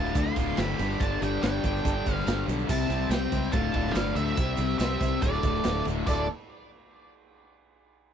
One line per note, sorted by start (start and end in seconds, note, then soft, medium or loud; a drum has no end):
0.00 0.11 D1 medium
0.00 0.16 D2 medium
0.00 0.16 A2 medium
0.00 0.17 D3 loud
0.00 0.13 F4 medium
0.00 0.17 A5 loud
0.06 shaker soft
0.15 0.32 D2 loud
0.15 0.37 D2 medium
0.15 0.37 A2 medium
0.15 0.37 D3 medium
0.15 0.56 F4 medium
0.15 0.59 C6 loud
0.15 kick loud
0.15 ride loud
0.15 shaker loud
0.36 0.53 D1 medium
0.36 0.57 D2 loud
0.36 0.58 A2 loud
0.36 0.59 D3 loud
0.36 kick medium
0.36 ride medium
0.36 shaker medium
0.48 snare soft
0.57 0.74 G1 medium
0.57 0.78 D2 medium
0.57 0.78 A2 medium
0.57 0.79 D3 loud
0.57 0.99 G4 medium
0.57 1.02 B5 loud
0.57 snare loud
0.57 ride loud
0.57 shaker medium
0.79 0.95 G1 loud
0.79 0.99 G2 medium
0.79 1.01 D3 loud
0.79 1.01 G3 loud
0.79 ride medium
0.79 shaker medium
0.91 shaker soft
1.00 1.17 G1 loud
1.00 1.20 G2 loud
1.00 1.21 D3 loud
1.00 1.22 G3 loud
1.00 1.20 D4 medium
1.00 1.20 A5 loud
1.00 kick loud
1.00 ride loud
1.00 shaker loud
1.21 1.38 G1 medium
1.21 1.41 G2 medium
1.21 1.42 D3 medium
1.21 1.42 G3 loud
1.21 1.42 D4 medium
1.21 1.42 G5 loud
1.21 ride medium
1.21 shaker medium
1.42 1.59 G1 loud
1.42 1.63 G2 loud
1.42 1.64 D3 loud
1.42 1.64 G3 loud
1.42 2.14 D4 medium
1.42 2.14 G5 loud
1.42 snare loud
1.42 ride loud
1.42 shaker loud
1.64 1.80 G1 medium
1.64 1.83 G2 medium
1.64 1.85 D3 medium
1.64 1.85 G3 loud
1.64 kick loud
1.64 ride medium
1.64 shaker medium
1.76 shaker soft
1.85 2.01 G1 loud
1.85 2.06 G2 medium
1.85 2.07 D3 loud
1.85 2.07 G3 loud
1.85 kick loud
1.85 ride loud
1.85 shaker loud
2.06 2.22 G1 medium
2.06 2.26 G2 loud
2.06 2.27 D3 loud
2.06 2.28 G3 loud
2.06 kick medium
2.06 ride medium
2.06 shaker medium
2.14 2.44 C4 medium
2.14 2.44 F5 loud
2.18 snare soft
2.27 2.43 G1 loud
2.27 2.47 G2 medium
2.27 2.48 D3 loud
2.27 2.49 G3 loud
2.27 snare loud
2.27 ride loud
2.27 shaker loud
2.46 2.64 B1 loud
2.46 2.68 G2 medium
2.46 2.68 D3 medium
2.46 2.67 G3 loud
2.46 ride medium
2.46 shaker medium
2.51 2.69 G3 medium
2.59 shaker soft
2.69 2.85 C2 loud
2.69 2.89 C3 loud
2.69 2.90 G3 loud
2.69 2.91 C4 loud
2.69 3.08 E4 medium
2.69 3.11 A5 loud
2.69 kick loud
2.69 crash loud
2.69 shaker loud
2.89 3.06 C2 medium
2.89 3.11 C3 medium
2.89 3.11 G3 loud
2.89 3.12 C4 loud
2.89 ride medium
2.89 shaker medium
3.09 3.26 C2 medium
3.09 3.31 C3 loud
3.09 3.32 G3 loud
3.09 3.51 C4 medium
3.09 3.32 C4 loud
3.09 3.52 G5 medium
3.09 snare loud
3.09 ride loud
3.09 shaker loud
3.32 3.49 C#2 medium
3.32 3.52 C3 medium
3.32 3.53 G3 loud
3.32 3.53 C4 loud
3.32 kick medium
3.32 ride medium
3.32 shaker medium
3.43 shaker soft
3.52 3.70 D1 loud
3.52 3.74 D2 loud
3.52 3.74 A2 loud
3.52 3.75 D3 loud
3.52 3.93 F4 medium
3.52 3.97 A5 loud
3.52 kick loud
3.52 ride loud
3.52 shaker loud
3.74 3.91 D1 loud
3.74 3.95 D2 loud
3.74 3.96 A2 loud
3.74 3.96 D3 loud
3.74 kick medium
3.74 ride medium
3.86 snare soft
3.93 4.11 G1 medium
3.93 4.17 D2 medium
3.93 4.15 D4 medium
3.93 4.14 F5 medium
3.93 snare loud
3.93 ride loud
3.93 shaker loud
3.97 4.18 A2 medium
3.97 4.18 D3 loud
4.15 4.32 D2 loud
4.15 4.38 D2 loud
4.15 4.38 A2 loud
4.15 4.38 D3 loud
4.15 4.77 C4 medium
4.15 4.77 E5 loud
4.15 ride medium
4.15 shaker medium
4.26 shaker soft
4.37 4.54 C2 loud
4.37 4.60 C3 medium
4.37 4.60 G3 loud
4.37 4.61 C4 loud
4.37 kick loud
4.37 ride loud
4.37 shaker medium
4.57 4.75 C2 medium
4.57 4.79 C3 medium
4.57 ride medium
4.57 shaker medium
4.61 4.80 C3 loud
4.61 4.81 G3 medium
4.61 4.82 C4 medium
4.78 4.96 C2 medium
4.78 5.01 C3 loud
4.78 5.21 C4 medium
4.78 5.22 E5 medium
4.78 snare loud
4.78 ride loud
4.78 shaker loud
4.82 5.02 G3 loud
4.82 5.02 C4 loud
5.00 5.17 C2 medium
5.00 5.22 C3 loud
5.00 5.22 G3 loud
5.00 5.22 C4 loud
5.00 kick loud
5.00 ride medium
5.00 shaker medium
5.22 5.39 D1 loud
5.22 5.44 D2 loud
5.22 5.45 A2 loud
5.22 5.45 D3 loud
5.22 5.84 A3 medium
5.22 5.82 D5 medium
5.22 kick loud
5.22 ride loud
5.22 shaker loud
5.33 shaker soft
5.43 5.60 D1 medium
5.43 5.63 D2 loud
5.43 5.65 A2 loud
5.43 5.65 D3 loud
5.43 kick medium
5.43 ride medium
5.43 shaker medium
5.56 shaker soft
5.64 5.81 D1 medium
5.64 5.86 D2 medium
5.64 5.87 A2 loud
5.64 5.88 D3 medium
5.64 snare loud
5.64 ride loud
5.64 shaker loud
5.85 6.03 D1 loud
5.85 6.06 D2 medium
5.85 6.06 A2 loud
5.85 6.07 D3 medium
5.85 ride medium
5.85 shaker medium
6.06 6.27 D1 loud
6.06 6.24 D2 medium
6.06 6.24 A2 medium
6.06 6.25 D3 loud
6.06 6.25 A3 loud
6.06 6.25 F4 loud
6.06 6.28 A4 medium
6.06 6.27 D5 medium
6.06 kick loud
6.06 crash loud
6.06 shaker medium